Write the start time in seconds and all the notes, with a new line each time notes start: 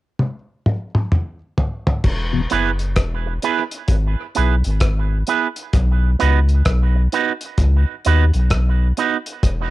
0.19 high tom
0.66 mid tom
0.95 mid tom
1.12 mid tom
1.58 floor tom
1.87 floor tom
2.04 E1, kick, crash
2.33 E2 B2
2.50 F#1 B3 E4 G#4 B4, closed hi-hat
2.79 closed hi-hat
2.96 E1, kick, cross-stick, closed hi-hat
3.26 muted clean electric guitar stroke
3.42 B3 E4 G#4 B4, closed hi-hat
3.71 closed hi-hat
3.88 G#1, kick, closed hi-hat
4.35 B1 B3 E4 G#4 B4, closed hi-hat
4.64 G#1, closed hi-hat
4.80 G#1, kick, cross-stick, closed hi-hat
5.27 B3 E4 G#4 B4, closed hi-hat
5.56 closed hi-hat
5.73 B1, kick, closed hi-hat
6.19 C#2 B3 D#4 F#4 B4, closed hi-hat
6.49 closed hi-hat
6.65 B1, kick, cross-stick, closed hi-hat
6.95 muted clean electric guitar stroke
7.12 B3 D#4 F#4 B4, closed hi-hat
7.41 closed hi-hat
7.58 C#2, kick, closed hi-hat
8.05 D#2 B3 D#4 F#4 B4, closed hi-hat
8.34 B1, closed hi-hat
8.50 B1, kick, cross-stick, closed hi-hat
8.97 B3 D#4 F#4 B4, closed hi-hat
9.26 closed hi-hat
9.43 E1, kick, closed hi-hat